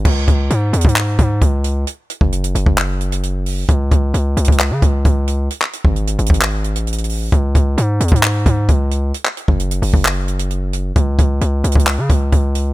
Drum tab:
CC |x-----------------------------------------------------------------------------------------------|------------------------------------------------------------------------------------------------|------------------------------------------------------------------------------------------------|------------------------------------------------------------------------------------------------|
HH |------------x-----------x-----------x---x---x---x-----------x-----------x-----------x-----------|x-----------x-----------x-----x-----x-----------x-----------x-----x-----x-----------o-----------|x-----------x-----------x-----------x---x---x---x-----------x-----------x-----------x-----------|x-----------x-----------x-----x-----x---x---x---x-----------x-----x-----x--x--x--x--o-----------|
CP |------------------------------------------------x-----------------------------------------------|------------------------------------------------x-----------------------------------------------|------------------------------------------------x-----------------------------------------------|------x-----------------------------------------x-----------------------------------------------|
BD |o-----------o-----------------------------o-----------------o-----------o-----------------------|------------------o-----------------------o-----------------------------------------------------|o-----------o-----------------------------o-----------------o-----------o-----------------------|------------------o-----------------------o-----------------------------------------------------|

CC |------------------------------------------------------------------------------------------------|------------------------------------------------------------------------------------------------|------------------------------------------------------------------------------------------------|
HH |x-----------x-----------x-----------x---x---x---x-----------x-----------x-----------x-----------|x-----------x-----------x-----x-----o-----------x-----------x-----x-----x-----------x-----------|x-----------x-----------x-----------x---x---x---x-----------x-----------x-----------x-----------|
CP |------------------------------------------------x-----------------------------------------------|------x-----------------------------------------x-----------------------------------------------|------------------------------------------------x-----------------------------------------------|
BD |o-----------o-----------------------------o-----------------o-----------o-----------------------|------------------o-----------------------o-----------------------------------------------------|o-----------o-----------------------------o-----------------o-----------o-----------------------|